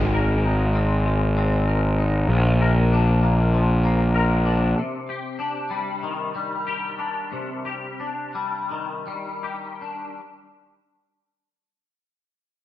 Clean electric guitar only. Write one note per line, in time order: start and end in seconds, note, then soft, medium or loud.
0.00 1.04 G#3 soft
0.14 1.67 A#4 soft
0.44 1.97 D#4 soft
0.74 1.36 C4 soft
1.05 2.29 G#3 soft
1.37 2.30 C4 soft
1.68 2.30 A#4 soft
1.98 2.30 D#4 soft
2.30 3.85 A#2 soft
2.61 4.13 A#4 soft
2.92 4.44 D4 soft
3.23 3.83 A#3 soft
3.53 4.78 F3 soft
3.84 4.77 A#3 soft
4.15 4.77 A#4 soft
4.45 4.81 D4 soft
4.78 7.01 C3 soft
5.09 6.66 G4 soft
5.39 6.98 D4 soft
5.70 6.34 G3 soft
6.03 7.66 D#3 soft
6.35 8.01 G3 soft
6.67 7.64 G4 soft
6.98 7.98 D4 soft
7.32 9.06 C3 soft
7.65 9.42 G4 soft
8.00 9.80 D4 soft
8.34 9.05 G3 soft
8.71 10.19 D#3 soft
9.07 10.19 G3 soft
9.43 10.19 G4 soft
9.81 10.19 D4 soft